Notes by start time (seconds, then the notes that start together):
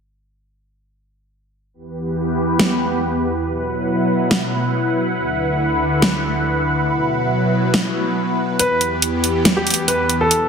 1.74 E2 E3 B3 G4 B4
2.59 snare
3.45 B2 F#3 E4 B4 F#5
4.31 snare
5.17 D2 D3
6.02 snare
6.88 B2 F#3
7.74 snare
8.59 E2 E3 B3 G4 B4, closed hi-hat
8.81 closed hi-hat
9.02 closed hi-hat
9.24 closed hi-hat
9.45 snare, closed hi-hat
9.57 G4
9.67 closed hi-hat
9.70 closed hi-hat
9.74 closed hi-hat
9.88 B4, closed hi-hat
10.10 closed hi-hat
10.21 A4
10.31 B2 F#3 E4 F#5, closed hi-hat